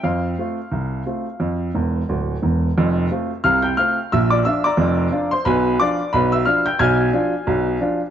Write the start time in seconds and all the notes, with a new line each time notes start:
0.04 F2 C5 F5
0.39 A3 C4 F4
0.72 C2
1.06 A3 C4 F4
1.40 F2
1.75 E1 E2
2.09 D1 D2
2.42 E1 E2
2.78 F1 F2
3.11 A3 C4 F4
3.44 C2 C3 F5 F6
3.62 G5 G6
3.77 A3 C4 F4 F5 F6
4.12 A#1 A#2 E5 E6
4.30 D5 D6
4.45 F3 D4 F4 E5 E6
4.64 D5 A#5 D6
4.77 F1 F2
5.11 F3 D4 F4
5.31 C5 C6
5.45 B1 B2 B4 G#5 B5
5.80 F3 D4 F4 D5 D6
6.13 B1 B2 B4 B5
6.32 E5 E6
6.46 F3 D4 F4 F5 F6
6.66 G5 G6
6.79 B1 B2 G#5 F6 G#6
7.13 F3 D4 F4
7.47 B1 B2
7.81 F3 D4 F4